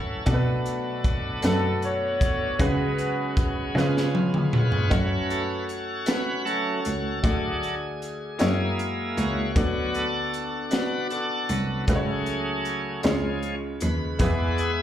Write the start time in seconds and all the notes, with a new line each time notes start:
Already playing: C#3 F#3 A3 C#4 E4 F#4 A4 B4
0.26 B2 F#3 A3 B3 D4 F#4 A4, kick, closed hi-hat
0.34 B4
0.66 closed hi-hat
1.04 kick, closed hi-hat
1.42 F#2 A3 D4 F#4 B4, snare, closed hi-hat
1.46 A4
1.82 F#4 A4 C#5, closed hi-hat
2.21 kick, closed hi-hat
2.58 C#3 F#3 G#3 B3 C#4 F#4 G#4 B4, kick, closed hi-hat
2.98 closed hi-hat
3.37 kick, closed hi-hat
3.75 C#3 E3 G#3 B3 C#4 F4 G#4 B4, snare
3.82 F4
3.97 snare
4.15 high tom
4.34 mid tom
4.53 B4 C#5, mid tom
4.72 floor tom
4.89 F#2 F#3 A3 C#4 F#4 C#5, kick, closed hi-hat
5.30 C#4 F#4 A4, closed hi-hat
5.69 closed hi-hat
6.06 A3 C#4 F#4 B4, snare, closed hi-hat
6.45 F#3 A3 C#4 F#4 A4, closed hi-hat
6.85 C#2, closed hi-hat
7.22 D2 D3 F#3 A3 D4 F#4 G#4 D5, kick, closed hi-hat
7.63 closed hi-hat
8.02 closed hi-hat
8.39 F#2 G#3 A#3 E4 F#4 C#5, snare, closed hi-hat
8.79 closed hi-hat
9.17 C#2 F#4 C#5, closed hi-hat
9.55 D2 D3 F#3 B3 D4 F#4 D5, kick, closed hi-hat
9.94 D4 F#4 A4, closed hi-hat
10.34 closed hi-hat
10.71 B3 D4 F#4 B4 D5, snare, closed hi-hat
11.10 D4 F#4 A4, closed hi-hat
11.49 C2 F#3 B3 D4, closed hi-hat
11.84 A3 A4, closed hi-hat
11.88 C#2 C#3 F#3 A3 C#4 F#4 G#4 B4, kick
11.96 C#5
12.26 closed hi-hat
12.65 closed hi-hat
13.03 C#2 C#3 F3 G#3 C#4 E4 C#5, snare, closed hi-hat
13.11 F4
13.43 closed hi-hat
13.80 D#2 B4, closed hi-hat
14.19 E2 E3 G#3 B3 E4 G#4 B4 D5, kick, closed hi-hat
14.58 G#4 B4 E5, closed hi-hat